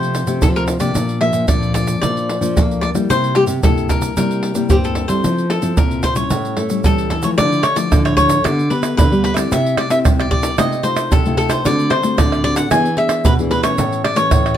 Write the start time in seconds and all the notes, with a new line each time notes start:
Already playing: C3 F3 A3 C4 G4 C5
0.03 pandeiro, shaker
0.15 pandeiro, shaker
0.27 C3 A3 C4 G4, pandeiro, shaker
0.42 C3 F3 A4, pandeiro, shaker, surdo
0.56 A#4, pandeiro, shaker
0.68 pandeiro, shaker
0.80 C3 F3 A#3 D4 D5, pandeiro, shaker
0.95 A#2, pandeiro, shaker, surdo
1.09 pandeiro, shaker
1.21 F3 A#3 D4 E5, pandeiro
1.33 A#2, pandeiro, shaker
1.48 F2 A#2 F3 A#3 D4 D5, pandeiro, shaker, surdo
1.63 pandeiro, shaker
1.74 D5, pandeiro, shaker
1.87 pandeiro, shaker
2.01 A#2 F3 A#3 D4 D5, pandeiro, shaker, surdo
2.17 pandeiro, shaker
2.29 pandeiro
2.41 F3 A#3 D4, pandeiro, shaker
2.56 F2 A#3, pandeiro, shaker, surdo
2.71 pandeiro, shaker
2.81 D5, pandeiro
2.94 G3 A#3 E4, pandeiro, shaker
3.09 C3 C5, pandeiro, shaker, surdo
3.24 pandeiro, shaker
3.35 G3 A#3 G4, pandeiro
3.47 C3, pandeiro, shaker
3.63 G2 C3 G3 A#3 E4 A4, pandeiro, shaker, surdo
3.77 pandeiro, shaker
3.89 A#4, pandeiro, shaker, surdo
4.02 pandeiro, shaker
4.17 C3 G3 A#3 E4 A#4, pandeiro, shaker, surdo
4.31 pandeiro, shaker
4.43 pandeiro
4.55 G3 A#3 E4, pandeiro, shaker
4.70 G2 C4 G4, pandeiro, shaker, surdo
4.84 A4, pandeiro, shaker
4.95 pandeiro
5.08 G3 C4 E4 A4 C5, pandeiro, shaker
5.24 F3, pandeiro, shaker, surdo
5.38 pandeiro, shaker
5.49 C4 E4 A4, pandeiro
5.62 F3 C4 E4 A4, pandeiro, shaker
5.77 A#2 C3 C4 E4 A4 A#4, pandeiro, shaker, surdo
5.91 pandeiro, shaker
6.03 C5, pandeiro, shaker, surdo
6.16 G3 C#4 E4 C#5, pandeiro, shaker
6.30 A2, pandeiro, shaker, surdo
6.45 pandeiro, shaker
6.57 A3, pandeiro
6.70 G3 C#4 E4, pandeiro, shaker
6.84 E3 G3 A4, pandeiro, shaker, surdo
6.98 pandeiro, shaker
7.10 E3 A4, pandeiro
7.23 F3 A3 E4 C#5, pandeiro, shaker
7.38 D3 D5, pandeiro, shaker, surdo
7.52 pandeiro, shaker
7.63 C#5, pandeiro, tamborim, shaker
7.76 F3 A3 E4 D5, pandeiro, shaker
7.92 A2 D3, pandeiro, tamborim, shaker, surdo
8.05 C#5, pandeiro, tamborim, shaker
8.17 F3 A3 E4 C#5, pandeiro, shaker, surdo
8.29 pandeiro, shaker
8.44 D3 B3 G4 A4 D5, pandeiro, tamborim, shaker, surdo
8.59 pandeiro, shaker
8.70 B3 G4 A4 B4, pandeiro
8.83 pandeiro, tamborim, shaker
8.97 D3 B4, pandeiro, shaker, surdo
9.12 G3 B3 G4 A4, pandeiro, shaker
9.24 B4, pandeiro
9.34 C4 E4 G4 D5 E5, pandeiro, tamborim, shaker
9.51 C3 E5, pandeiro, shaker, surdo
9.66 pandeiro, shaker
9.77 D5, pandeiro, tamborim
9.90 C4 E4 G4 E5, pandeiro, shaker
10.04 C3 G3, pandeiro, tamborim, shaker, surdo
10.20 D5, pandeiro, tamborim, shaker
10.31 C4 E4 G4 D5, pandeiro, surdo
10.43 pandeiro, shaker
10.58 C3 A3 D#4 F4 D#5, pandeiro, tamborim, shaker, surdo
10.72 pandeiro, shaker
10.83 A3 D#4 F4 C5, pandeiro, shaker
10.97 pandeiro, tamborim, shaker
11.12 C3 A4, pandeiro, shaker, surdo
11.26 C3 A3 D#4 F4, pandeiro, shaker
11.37 A4, pandeiro
11.50 C5, pandeiro, tamborim, shaker
11.65 D3 A3 C4 F#4 D5, pandeiro, shaker, surdo
11.79 pandeiro, shaker
11.90 C5, pandeiro, tamborim
12.03 A3 C4 F#4, pandeiro, shaker
12.18 A2 D3 D5, pandeiro, tamborim, shaker, surdo
12.32 pandeiro, tamborim, shaker
12.44 A3 C4 F#4 D5, pandeiro
12.56 F#5, pandeiro, shaker
12.71 E3 B3 D4 G#4 G#5, pandeiro, tamborim, shaker, surdo
12.85 pandeiro, shaker
12.97 B3 D4 G#4 E5, pandeiro
13.09 pandeiro, tamborim, shaker
13.25 B2 B4, pandeiro, shaker, surdo
13.39 E3 B3 D4 G#4, pandeiro, shaker
13.51 B4, pandeiro
13.63 E3 A3 C#4 C#5, pandeiro, tamborim, shaker
13.78 A2, pandeiro, shaker, surdo
13.93 pandeiro, shaker
14.04 D5, pandeiro, tamborim
14.16 E3 A3 C#4 C#5, pandeiro, shaker
14.31 A2 E3, pandeiro, tamborim, shaker, surdo
14.46 pandeiro, tamborim, shaker